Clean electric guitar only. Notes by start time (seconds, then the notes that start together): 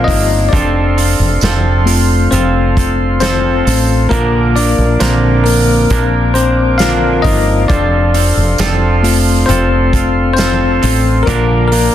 0.08 F3 A#3 D4 A#4
0.53 F3 C4 F4 A4
0.98 C4 F4 A4
1.43 F3 C4 F4 A4
2.32 F3 C4 F4 A4
2.77 C4 F4 A4
3.22 F3 C4 F4 A4
3.65 C4 F4 A4
4.11 A#2 D3 F3 A#3 D4 A#4
4.55 F3 A#3 D4 A#4
5.00 A#2 D3 F3 A#3 D4 A#4
5.90 F3 A#3 D4 A#4
6.35 F3 A#3 D4 A#4
6.80 A#2 D3 F3 A#3 D4 A#4
7.25 F3 A#3 D4 A#4
7.70 F3 C4 F4 A4
8.15 C4 F4 A4
8.59 F3 C4 F4 A4
9.48 F3 C4 F4 A4
9.93 C4 F4 A4
10.38 F3 C4 F4 A4
10.82 C4 F4 A4
11.27 A#2 D3 F3 A#3 D4 A#4
11.72 F3 A#3 D4 A#4